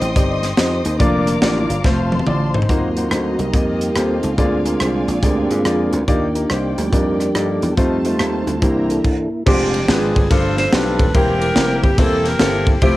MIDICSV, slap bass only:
0, 0, Header, 1, 2, 480
1, 0, Start_track
1, 0, Key_signature, -2, "major"
1, 0, Tempo, 421941
1, 1142, Time_signature, 4, 2, 24, 8
1, 10766, Key_signature, 0, "major"
1, 14752, End_track
2, 0, Start_track
2, 0, Title_t, "Slap bass"
2, 0, Program_c, 0, 36
2, 14, Note_on_c, 0, 33, 90
2, 158, Note_off_c, 0, 33, 0
2, 179, Note_on_c, 0, 31, 89
2, 588, Note_off_c, 0, 31, 0
2, 663, Note_on_c, 0, 41, 88
2, 927, Note_off_c, 0, 41, 0
2, 972, Note_on_c, 0, 39, 86
2, 1116, Note_off_c, 0, 39, 0
2, 1137, Note_on_c, 0, 29, 109
2, 1546, Note_off_c, 0, 29, 0
2, 1613, Note_on_c, 0, 33, 101
2, 1880, Note_off_c, 0, 33, 0
2, 1928, Note_on_c, 0, 31, 80
2, 2073, Note_off_c, 0, 31, 0
2, 2097, Note_on_c, 0, 29, 90
2, 2506, Note_off_c, 0, 29, 0
2, 2581, Note_on_c, 0, 33, 96
2, 2989, Note_off_c, 0, 33, 0
2, 3063, Note_on_c, 0, 39, 77
2, 3470, Note_off_c, 0, 39, 0
2, 3540, Note_on_c, 0, 38, 70
2, 3805, Note_off_c, 0, 38, 0
2, 3853, Note_on_c, 0, 36, 73
2, 3997, Note_off_c, 0, 36, 0
2, 4020, Note_on_c, 0, 41, 85
2, 4430, Note_off_c, 0, 41, 0
2, 4504, Note_on_c, 0, 39, 79
2, 4769, Note_off_c, 0, 39, 0
2, 4819, Note_on_c, 0, 37, 69
2, 4961, Note_off_c, 0, 37, 0
2, 4983, Note_on_c, 0, 38, 83
2, 5393, Note_off_c, 0, 38, 0
2, 5468, Note_on_c, 0, 36, 70
2, 5733, Note_off_c, 0, 36, 0
2, 5778, Note_on_c, 0, 34, 75
2, 5922, Note_off_c, 0, 34, 0
2, 5946, Note_on_c, 0, 38, 79
2, 6213, Note_off_c, 0, 38, 0
2, 6260, Note_on_c, 0, 43, 84
2, 6405, Note_off_c, 0, 43, 0
2, 6431, Note_on_c, 0, 41, 82
2, 6697, Note_off_c, 0, 41, 0
2, 6747, Note_on_c, 0, 38, 69
2, 6890, Note_off_c, 0, 38, 0
2, 6914, Note_on_c, 0, 39, 96
2, 7324, Note_off_c, 0, 39, 0
2, 7397, Note_on_c, 0, 36, 73
2, 7663, Note_off_c, 0, 36, 0
2, 7710, Note_on_c, 0, 38, 71
2, 7853, Note_off_c, 0, 38, 0
2, 7880, Note_on_c, 0, 41, 82
2, 8289, Note_off_c, 0, 41, 0
2, 8363, Note_on_c, 0, 43, 82
2, 8627, Note_off_c, 0, 43, 0
2, 8675, Note_on_c, 0, 40, 78
2, 8818, Note_off_c, 0, 40, 0
2, 8845, Note_on_c, 0, 41, 86
2, 9253, Note_off_c, 0, 41, 0
2, 9325, Note_on_c, 0, 39, 63
2, 9590, Note_off_c, 0, 39, 0
2, 9633, Note_on_c, 0, 38, 70
2, 9778, Note_off_c, 0, 38, 0
2, 9806, Note_on_c, 0, 36, 78
2, 10214, Note_off_c, 0, 36, 0
2, 10769, Note_on_c, 0, 29, 111
2, 11175, Note_off_c, 0, 29, 0
2, 11241, Note_on_c, 0, 32, 93
2, 11507, Note_off_c, 0, 32, 0
2, 11557, Note_on_c, 0, 31, 81
2, 11700, Note_off_c, 0, 31, 0
2, 11721, Note_on_c, 0, 31, 96
2, 12129, Note_off_c, 0, 31, 0
2, 12201, Note_on_c, 0, 35, 82
2, 12505, Note_on_c, 0, 27, 93
2, 12522, Note_off_c, 0, 35, 0
2, 12651, Note_off_c, 0, 27, 0
2, 12678, Note_on_c, 0, 28, 106
2, 13084, Note_off_c, 0, 28, 0
2, 13156, Note_on_c, 0, 29, 85
2, 13419, Note_off_c, 0, 29, 0
2, 13468, Note_on_c, 0, 31, 90
2, 13610, Note_off_c, 0, 31, 0
2, 13630, Note_on_c, 0, 28, 89
2, 14037, Note_off_c, 0, 28, 0
2, 14112, Note_on_c, 0, 31, 93
2, 14517, Note_off_c, 0, 31, 0
2, 14584, Note_on_c, 0, 29, 109
2, 14752, Note_off_c, 0, 29, 0
2, 14752, End_track
0, 0, End_of_file